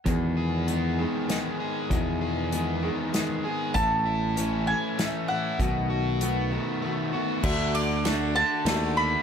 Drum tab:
CC |------|------|------|------|
RD |------|------|------|------|
HH |x-x-x-|x-x-x-|x-x-x-|x-x---|
SD |----o-|----o-|----o-|------|
BD |o-----|o-----|o-----|o-----|

CC |x-----|
RD |-xx-x-|
HH |------|
SD |--o-o-|
BD |o-----|